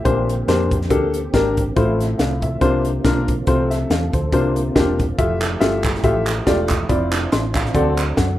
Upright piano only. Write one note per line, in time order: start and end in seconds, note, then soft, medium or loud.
0.00 0.27 E5 medium
0.05 0.67 A#2 medium
0.05 0.32 A#3 medium
0.05 0.32 D4 medium
0.05 0.32 G4 medium
0.05 0.32 C5 medium
0.48 0.75 A#3 medium
0.48 0.75 D4 medium
0.48 0.75 G4 medium
0.48 0.75 C5 medium
0.90 1.18 A#3 medium
0.90 1.18 D4 medium
0.90 1.18 G4 medium
0.90 1.18 A4 loud
1.34 1.61 A#3 medium
1.34 1.61 D4 medium
1.34 1.61 G4 medium
1.34 1.61 A#4 loud
1.76 2.39 A2 medium
1.76 2.03 A3 medium
1.76 2.03 E4 medium
1.76 2.03 F4 medium
1.76 2.03 C5 medium
2.19 2.41 F5 medium
2.43 2.83 E5 medium
2.61 3.24 C3 medium
2.61 2.89 A#3 medium
2.61 2.88 D4 medium
2.61 2.88 F4 medium
2.61 2.89 C5 loud
3.05 3.32 A#3 medium
3.05 3.32 D4 medium
3.05 3.32 F4 medium
3.05 3.32 A#4 medium
3.47 4.10 C3 medium
3.47 3.74 A3 medium
3.47 3.74 C4 medium
3.47 3.75 F4 medium
3.47 3.71 C5 medium
3.70 3.89 E5 medium
3.91 4.13 F5 medium
4.14 4.32 C5 medium
4.33 4.95 C3 medium
4.33 4.60 A#3 medium
4.33 4.60 D4 medium
4.33 4.60 F4 medium
4.33 4.60 C5 medium
4.75 5.03 A#3 medium
4.75 5.03 D4 medium
4.75 5.03 F4 medium
4.75 5.03 G4 medium
5.18 5.46 A3 medium
5.18 5.46 F4 medium
5.18 5.46 G4 medium
5.18 5.46 E5 medium
5.60 5.88 A3 medium
5.60 5.88 F4 medium
5.60 5.88 G4 medium
5.60 5.88 E5 medium
6.04 6.31 A3 medium
6.04 6.31 F4 medium
6.04 6.31 G4 medium
6.04 6.31 E5 medium
6.47 6.74 A3 medium
6.47 6.74 F4 medium
6.47 6.74 G4 medium
6.47 6.74 D5 medium
6.89 7.17 C4 medium
6.89 7.17 E4 medium
6.89 7.17 F4 medium
6.89 7.17 D5 medium
7.32 7.55 C6 medium
7.56 7.97 F5 medium
7.75 8.37 D3 medium
7.75 8.02 C4 medium
7.75 8.02 F#4 medium
7.75 8.02 A4 medium
7.75 8.02 D5 medium
8.17 8.39 F#5 medium